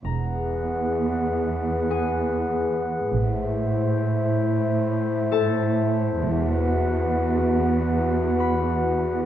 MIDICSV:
0, 0, Header, 1, 5, 480
1, 0, Start_track
1, 0, Tempo, 618557
1, 35, Time_signature, 5, 2, 24, 8
1, 7183, End_track
2, 0, Start_track
2, 0, Title_t, "Harp"
2, 0, Program_c, 0, 46
2, 36, Note_on_c, 0, 82, 20
2, 1479, Note_on_c, 0, 68, 19
2, 1481, Note_on_c, 0, 80, 20
2, 2454, Note_off_c, 0, 82, 0
2, 2917, Note_off_c, 0, 68, 0
2, 2917, Note_off_c, 0, 80, 0
2, 4125, Note_on_c, 0, 69, 29
2, 4129, Note_on_c, 0, 81, 37
2, 5561, Note_off_c, 0, 69, 0
2, 5561, Note_off_c, 0, 81, 0
2, 6518, Note_on_c, 0, 83, 25
2, 7183, Note_off_c, 0, 83, 0
2, 7183, End_track
3, 0, Start_track
3, 0, Title_t, "Glass harmonica"
3, 0, Program_c, 1, 92
3, 39, Note_on_c, 1, 71, 20
3, 41, Note_on_c, 1, 68, 19
3, 42, Note_on_c, 1, 78, 19
3, 2406, Note_off_c, 1, 71, 0
3, 2407, Note_off_c, 1, 68, 0
3, 2408, Note_off_c, 1, 78, 0
3, 2440, Note_on_c, 1, 72, 22
3, 2442, Note_on_c, 1, 64, 22
3, 2445, Note_on_c, 1, 76, 23
3, 4838, Note_off_c, 1, 64, 0
3, 4838, Note_off_c, 1, 72, 0
3, 4840, Note_off_c, 1, 76, 0
3, 4842, Note_on_c, 1, 66, 29
3, 4842, Note_on_c, 1, 78, 31
3, 4844, Note_on_c, 1, 71, 30
3, 7183, Note_off_c, 1, 66, 0
3, 7183, Note_off_c, 1, 71, 0
3, 7183, Note_off_c, 1, 78, 0
3, 7183, End_track
4, 0, Start_track
4, 0, Title_t, "Cello section"
4, 0, Program_c, 2, 48
4, 32, Note_on_c, 2, 40, 27
4, 2402, Note_off_c, 2, 40, 0
4, 2432, Note_on_c, 2, 45, 33
4, 4802, Note_off_c, 2, 45, 0
4, 4836, Note_on_c, 2, 40, 45
4, 7183, Note_off_c, 2, 40, 0
4, 7183, End_track
5, 0, Start_track
5, 0, Title_t, "Double bass section"
5, 0, Program_c, 3, 48
5, 40, Note_on_c, 3, 28, 25
5, 486, Note_off_c, 3, 28, 0
5, 2435, Note_on_c, 3, 33, 32
5, 2884, Note_off_c, 3, 33, 0
5, 4839, Note_on_c, 3, 28, 41
5, 5286, Note_off_c, 3, 28, 0
5, 7183, End_track
0, 0, End_of_file